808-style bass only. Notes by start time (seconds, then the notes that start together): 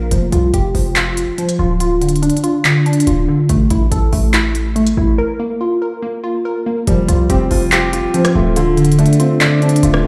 0.11 F1
0.32 C2
0.54 F1
0.75 F1
1.59 D1
3.07 D1
3.49 A1
3.71 A1
3.92 A1
4.13 A1
4.97 A1
6.87 F1
7.09 C2
7.30 F1
7.51 F1
8.35 D1
9.83 D1